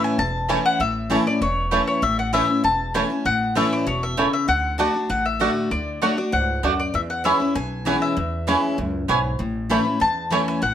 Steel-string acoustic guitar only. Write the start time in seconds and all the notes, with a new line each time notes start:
Already playing: A2 E3 A3 C#4 E4
0.49 E3 A3 C#4 E4
0.80 A2
1.10 E3 A3 C#4 E4
1.26 C#4 E4
1.42 E2
1.72 E3 A3 C#4 E4
2.02 A2
2.33 E3 A3 C#4 E4
2.48 C#4 E4
2.64 E2
2.94 E3 A3 C#4 E4
3.10 C#4 E4
3.25 A2
3.55 E3 A3 C#4 E4
3.87 B2
4.17 C#3
4.48 D3
4.78 D3 A3 D4 F#4
4.94 D4 F#4
5.10 A2
5.40 D3 A3 D4 F#4
5.71 D3
6.02 D3 A3 D4 F#4
6.17 D4 F#4
6.32 G#2
6.63 F#2
6.94 E2
7.24 E3 G#3 C#4 E4
7.40 C#4 E4
7.55 B2
7.85 E3 G#3 C#4 E4
8.17 E2
8.47 E3 G#3 C#4 E4
8.78 F#2
9.08 G#2
9.39 A2
9.70 E3 A3 C#4 E4
9.85 C#4 E4
10.00 E2
10.30 E3 A3 C#4 E4
10.62 A2